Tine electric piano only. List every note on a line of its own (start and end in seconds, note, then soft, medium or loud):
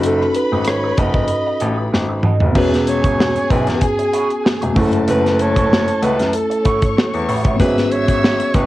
0.00 2.19 C#4 medium
0.00 2.20 D#4 medium
0.00 2.21 F#4 medium
0.00 2.22 A4 medium
2.52 4.70 B3 medium
2.52 4.72 C#4 medium
2.56 4.73 F#4 medium
2.56 4.74 G#4 medium
4.73 7.23 A3 medium
4.73 7.24 C#4 medium
4.78 7.25 E4 medium
4.78 7.27 A4 medium
7.57 8.66 B3 medium
7.57 8.66 C#4 medium
7.62 8.66 F#4 medium
7.62 8.66 G#4 medium